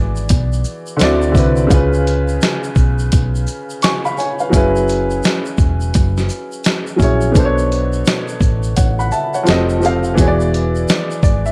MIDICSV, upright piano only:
0, 0, Header, 1, 2, 480
1, 0, Start_track
1, 0, Tempo, 705882
1, 1160, Time_signature, 4, 2, 24, 8
1, 7832, End_track
2, 0, Start_track
2, 0, Title_t, "Upright piano"
2, 0, Program_c, 0, 0
2, 0, Control_c, 0, 64, 127
2, 0, Note_on_c, 0, 52, 86
2, 0, Note_on_c, 0, 59, 80
2, 0, Note_on_c, 0, 66, 80
2, 0, Note_on_c, 0, 68, 80
2, 0, Note_on_c, 0, 74, 100
2, 656, Note_on_c, 0, 50, 89
2, 669, Note_on_c, 0, 60, 80
2, 680, Note_on_c, 0, 64, 78
2, 688, Control_c, 0, 64, 0
2, 689, Note_off_c, 0, 74, 0
2, 690, Note_off_c, 0, 66, 0
2, 690, Note_off_c, 0, 68, 0
2, 692, Note_off_c, 0, 52, 0
2, 692, Note_off_c, 0, 59, 0
2, 692, Note_on_c, 0, 66, 79
2, 705, Note_on_c, 0, 74, 96
2, 793, Control_c, 0, 64, 127
2, 873, Note_off_c, 0, 50, 0
2, 879, Note_off_c, 0, 60, 0
2, 885, Note_off_c, 0, 64, 0
2, 891, Note_off_c, 0, 66, 0
2, 896, Note_on_c, 0, 50, 82
2, 897, Note_off_c, 0, 74, 0
2, 908, Note_on_c, 0, 60, 74
2, 919, Note_on_c, 0, 64, 76
2, 932, Note_on_c, 0, 66, 72
2, 944, Note_on_c, 0, 71, 90
2, 1100, Note_off_c, 0, 50, 0
2, 1106, Note_off_c, 0, 60, 0
2, 1112, Note_off_c, 0, 64, 0
2, 1118, Note_off_c, 0, 66, 0
2, 1124, Note_off_c, 0, 71, 0
2, 1135, Note_on_c, 0, 49, 90
2, 1148, Note_on_c, 0, 61, 79
2, 1160, Note_on_c, 0, 65, 84
2, 1170, Control_c, 0, 64, 0
2, 1172, Note_on_c, 0, 68, 79
2, 1183, Note_on_c, 0, 71, 100
2, 1278, Control_c, 0, 64, 127
2, 1852, Note_off_c, 0, 49, 0
2, 1858, Note_off_c, 0, 61, 0
2, 1864, Note_off_c, 0, 65, 0
2, 1870, Note_off_c, 0, 68, 0
2, 1876, Note_off_c, 0, 71, 0
2, 2602, Note_on_c, 0, 85, 60
2, 2606, Note_on_c, 0, 80, 55
2, 2746, Note_off_c, 0, 85, 0
2, 2748, Note_off_c, 0, 80, 0
2, 2754, Note_on_c, 0, 83, 73
2, 2757, Note_on_c, 0, 77, 57
2, 2836, Note_off_c, 0, 83, 0
2, 2838, Note_off_c, 0, 77, 0
2, 2840, Note_on_c, 0, 80, 72
2, 2844, Note_on_c, 0, 73, 59
2, 2984, Note_off_c, 0, 80, 0
2, 2987, Note_off_c, 0, 73, 0
2, 2993, Note_on_c, 0, 77, 64
2, 2997, Note_on_c, 0, 71, 57
2, 3057, Note_on_c, 0, 54, 83
2, 3070, Note_on_c, 0, 61, 81
2, 3082, Note_on_c, 0, 64, 78
2, 3090, Control_c, 0, 64, 0
2, 3094, Note_on_c, 0, 68, 81
2, 3096, Note_off_c, 0, 71, 0
2, 3106, Note_on_c, 0, 71, 97
2, 3194, Control_c, 0, 64, 127
2, 3221, Note_off_c, 0, 77, 0
2, 3773, Note_off_c, 0, 54, 0
2, 3779, Note_off_c, 0, 61, 0
2, 3785, Note_off_c, 0, 64, 0
2, 3791, Note_off_c, 0, 68, 0
2, 3797, Note_off_c, 0, 71, 0
2, 4735, Note_on_c, 0, 54, 81
2, 4748, Note_on_c, 0, 61, 70
2, 4760, Note_on_c, 0, 64, 71
2, 4772, Note_on_c, 0, 68, 75
2, 4784, Note_on_c, 0, 73, 89
2, 4940, Note_off_c, 0, 54, 0
2, 4946, Note_off_c, 0, 61, 0
2, 4952, Note_off_c, 0, 64, 0
2, 4958, Note_off_c, 0, 68, 0
2, 4964, Note_off_c, 0, 73, 0
2, 4974, Note_on_c, 0, 47, 87
2, 4986, Note_on_c, 0, 59, 81
2, 4999, Note_on_c, 0, 62, 80
2, 5009, Control_c, 0, 64, 0
2, 5011, Note_on_c, 0, 69, 79
2, 5023, Note_on_c, 0, 72, 77
2, 5066, Note_on_c, 0, 73, 94
2, 5067, Note_off_c, 0, 72, 0
2, 5108, Control_c, 0, 64, 127
2, 5692, Note_off_c, 0, 47, 0
2, 5697, Note_off_c, 0, 59, 0
2, 5704, Note_off_c, 0, 62, 0
2, 5710, Note_off_c, 0, 69, 0
2, 5737, Note_off_c, 0, 73, 0
2, 5959, Note_on_c, 0, 78, 61
2, 5963, Note_on_c, 0, 73, 51
2, 6104, Note_off_c, 0, 78, 0
2, 6106, Note_off_c, 0, 73, 0
2, 6113, Note_on_c, 0, 83, 67
2, 6117, Note_on_c, 0, 78, 60
2, 6196, Note_off_c, 0, 83, 0
2, 6198, Note_off_c, 0, 78, 0
2, 6200, Note_on_c, 0, 81, 70
2, 6203, Note_on_c, 0, 76, 56
2, 6345, Note_off_c, 0, 81, 0
2, 6346, Note_off_c, 0, 76, 0
2, 6352, Note_on_c, 0, 78, 65
2, 6355, Note_on_c, 0, 73, 55
2, 6414, Note_on_c, 0, 53, 89
2, 6427, Note_on_c, 0, 60, 81
2, 6438, Note_on_c, 0, 67, 81
2, 6449, Control_c, 0, 64, 0
2, 6450, Note_on_c, 0, 69, 82
2, 6462, Note_on_c, 0, 75, 93
2, 6565, Control_c, 0, 64, 127
2, 6580, Note_off_c, 0, 78, 0
2, 6582, Note_off_c, 0, 73, 0
2, 6632, Note_off_c, 0, 53, 0
2, 6638, Note_off_c, 0, 60, 0
2, 6644, Note_off_c, 0, 67, 0
2, 6650, Note_off_c, 0, 69, 0
2, 6654, Note_on_c, 0, 53, 78
2, 6656, Note_off_c, 0, 75, 0
2, 6667, Note_on_c, 0, 60, 71
2, 6679, Note_on_c, 0, 67, 75
2, 6691, Note_on_c, 0, 69, 72
2, 6703, Note_on_c, 0, 77, 92
2, 6859, Note_off_c, 0, 53, 0
2, 6866, Note_off_c, 0, 60, 0
2, 6872, Note_off_c, 0, 67, 0
2, 6878, Note_off_c, 0, 69, 0
2, 6884, Note_off_c, 0, 77, 0
2, 6894, Note_on_c, 0, 52, 84
2, 6906, Note_on_c, 0, 59, 81
2, 6918, Note_on_c, 0, 66, 80
2, 6927, Control_c, 0, 64, 0
2, 6930, Note_on_c, 0, 68, 81
2, 6943, Note_on_c, 0, 73, 74
2, 6988, Note_off_c, 0, 73, 0
2, 6988, Note_on_c, 0, 74, 96
2, 7058, Control_c, 0, 64, 127
2, 7612, Note_off_c, 0, 52, 0
2, 7617, Note_off_c, 0, 59, 0
2, 7624, Note_off_c, 0, 66, 0
2, 7629, Note_off_c, 0, 74, 0
2, 7630, Note_off_c, 0, 68, 0
2, 7639, Note_on_c, 0, 74, 72
2, 7781, Note_off_c, 0, 74, 0
2, 7791, Note_on_c, 0, 76, 75
2, 7832, Note_off_c, 0, 76, 0
2, 7832, End_track
0, 0, End_of_file